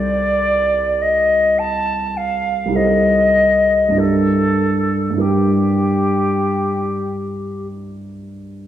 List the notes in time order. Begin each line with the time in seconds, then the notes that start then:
Already playing: C2 D#4 G4 A4 C5 D5
1.02 D#5
1.59 A5
2.17 F5
2.66 C2 D#4
2.70 G4 A4
2.75 C5 D#5
3.89 G2 D4
3.94 E4 G4
3.98 A4 A#4
5.10 G2 D4
5.15 E4 G4
5.19 G4 A#4